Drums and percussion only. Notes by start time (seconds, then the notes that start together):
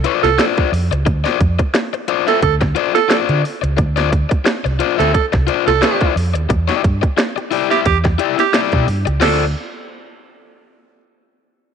0.04 closed hi-hat
0.24 snare, closed hi-hat
0.39 snare, closed hi-hat
0.57 kick, closed hi-hat
0.74 open hi-hat
0.92 closed hi-hat
1.06 kick, closed hi-hat
1.26 snare, closed hi-hat
1.41 kick, closed hi-hat
1.59 kick, closed hi-hat
1.75 snare, closed hi-hat
1.94 closed hi-hat
2.08 closed hi-hat
2.28 snare, closed hi-hat
2.42 kick, closed hi-hat
2.61 kick, snare, closed hi-hat
2.76 closed hi-hat
2.96 snare, closed hi-hat
3.11 snare, closed hi-hat
3.29 closed hi-hat
3.45 open hi-hat
3.64 closed hi-hat
3.78 kick, closed hi-hat
3.97 snare, closed hi-hat
4.13 kick, closed hi-hat
4.31 kick, closed hi-hat
4.46 snare, closed hi-hat
4.66 closed hi-hat
4.80 closed hi-hat
5.00 snare, closed hi-hat
5.14 kick, closed hi-hat
5.33 kick, snare, closed hi-hat
5.48 closed hi-hat
5.68 snare, closed hi-hat
5.83 snare, closed hi-hat
6.01 kick, closed hi-hat
6.17 open hi-hat
6.35 closed hi-hat
6.50 kick, closed hi-hat
6.69 snare, closed hi-hat
6.84 kick, closed hi-hat
7.03 kick, closed hi-hat
7.18 snare, closed hi-hat
7.38 closed hi-hat
7.52 open hi-hat
7.71 snare, closed hi-hat
7.86 kick, closed hi-hat
8.05 kick, snare, closed hi-hat
8.19 closed hi-hat
8.39 snare, closed hi-hat
8.54 snare, closed hi-hat
8.72 kick, closed hi-hat
8.88 open hi-hat
9.07 closed hi-hat
9.22 snare, crash